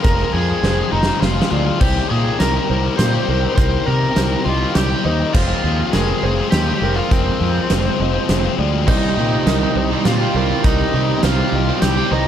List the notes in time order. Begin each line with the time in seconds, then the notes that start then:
Already playing: G#4 C5 F5 C6
0.04 F1 F3 G#3 C4 F4 A#4, kick, closed hi-hat
0.33 F2 F3 G#3 C4 G#4
0.37 F4
0.63 F1 F3 G#3 C4 F4 C5, snare
0.78 G#3 C4 F4
0.92 F1 F3 G#3 C4 D#4 F4 D#5
1.03 snare
1.07 G#3 C4 F4
1.22 F1 F4, snare
1.37 G#3 C4 F4
1.42 snare
1.51 D2 F3 G#3 C4 F4 D5
1.66 G#3 C4 F4
1.80 C2 C3 D#3 G3 C4 G4 C5 D#5 A#5, kick, crash
2.10 A#2 D#3 G3 C4 G4 G#4
2.39 C2 C3 D#3 G3 C4 G4 A#4, snare, closed hi-hat
2.54 G3 C4 G4
2.69 C2 D#3 G3 C4 G4 C5
2.83 G3 C4 G4
2.98 A#2 C5, snare, closed hi-hat
3.13 G3 C4 G4
3.28 C2 D#3 G3 C4 G4 A#4
3.42 G3 C4 G4
3.56 C2 C3 D#3 G3 C4 A#4 C5, kick, closed hi-hat
3.60 G4
3.86 C3 D#3 G3 C4 A#4
3.90 G4
4.16 C2 C3 D#3 G3 C4 G4 C5, snare, closed hi-hat
4.31 G3 C4 G4
4.45 C2 D#3 G3 C4 F4 D#5
4.49 G4
4.60 G3 C4 G4
4.75 C2 G4, snare, closed hi-hat
4.90 G3 C4 G4
5.04 D#2 D#3 G3 C4 D#4 G4 C5
5.20 G3 C4 G4
5.33 F1 F3 G#3 F4 C5 F5 C6, kick, crash
5.37 C4 F4
5.64 D#2 F3 G#3 C4 F4
5.93 F1 F3 G#3 C4 F4 G#4 A#4, snare, closed hi-hat
6.09 G#3 C4 F4
6.23 F1 F3 G#3 C4 F4 C5
6.37 G#3 C4 F4
6.51 D#2 G4, snare, closed hi-hat
6.67 G#3 C4 F4
6.81 F1 F3 G#3 C4 F4 A#4
6.96 G#3 C4 F4
7.11 F1 F3 G#3 C4 F4 A#4, kick, closed hi-hat
7.40 F2 F3 G#3 C4 F4
7.69 F1 F3 G#3 C4 F4 C5, snare, closed hi-hat
7.84 G#3 C4 F4
7.99 F1 F3 G#3 C4 F4 D#5
8.14 G#3 C4 F4
8.29 F1, snare, closed hi-hat
8.43 G#3 C4 F4
8.57 D2 F3 G#3 C4 F4 D5
8.72 G#3 C4 F4
8.87 C2 C3 D#3 G3 C4 D#4 G4 C5 D#5 A#5, kick, crash
9.16 A#2 D#3 G3 C4 G4
9.45 C2 C3 D#3 G3 C4 G4 A#4, snare, closed hi-hat
9.60 G3 C4 G4
9.75 C2 D#3 G3 C4 G4 C5, muted overdriven electric guitar stroke
9.90 G3 C4 G4
10.05 A#2 F4, snare, closed hi-hat
10.19 G3 C4 G4
10.34 C2 D#3 G3 C4 G4 A#4
10.49 G3 C4 G4
10.64 C2 C3 D#3 G3 C4 D#4 G4 A#4, kick, closed hi-hat
10.93 C3 D#3 G3 C4 G4
11.23 C2 C3 D#3 G3 C4 F4 G4 C5, snare, closed hi-hat
11.38 G3 C4 G4
11.52 C2 D#3 G3 C4 G4 D#5, muted overdriven electric guitar stroke
11.68 G3 C4 G4
11.82 C2 G4, snare, closed hi-hat
11.97 G3 C4 G4
12.11 C2 D#3 G3 C4 D#4 G4 C5